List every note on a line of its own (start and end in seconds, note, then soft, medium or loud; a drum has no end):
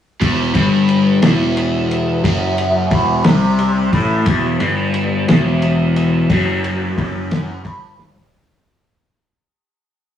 0.21 0.53 E1 medium
0.21 0.54 E2 loud
0.21 kick loud
0.21 ride loud
0.55 1.19 G1 loud
0.55 1.22 G2 loud
0.55 kick loud
0.55 ride medium
0.89 ride medium
1.22 2.20 E1 medium
1.22 2.23 E2 loud
1.22 snare loud
1.22 ride loud
1.57 ride medium
1.91 ride medium
2.24 2.88 F#1 medium
2.24 2.91 F#2 loud
2.24 kick loud
2.24 ride loud
2.58 ride medium
2.91 3.23 E1 medium
2.91 3.24 E2 loud
2.91 kick loud
2.91 ride medium
3.24 3.89 C2 medium
3.24 3.92 C3 loud
3.24 snare loud
3.24 ride medium
3.59 ride medium
3.93 4.24 A1 loud
3.93 4.26 A2 loud
3.93 kick loud
3.93 ride medium
4.26 4.58 E1 medium
4.26 4.60 E2 loud
4.26 kick loud
4.26 ride medium
4.60 5.24 G1 medium
4.60 5.27 G2 loud
4.60 ride medium
4.94 ride medium
5.28 6.26 E1 medium
5.28 6.31 E2 loud
5.28 snare loud
5.28 ride medium
5.62 ride medium
5.96 ride medium
6.30 6.93 F#1 medium
6.30 6.96 F#2 loud
6.30 kick loud
6.30 ride loud
6.64 ride medium
6.97 7.61 F#1 medium
6.97 7.64 F#2 loud
6.97 kick loud
6.97 ride medium
7.31 snare loud
7.31 ride medium
7.64 8.28 G1 medium
7.64 8.31 G2 loud
7.64 kick loud
7.64 ride medium
7.99 snare medium
8.16 floor tom medium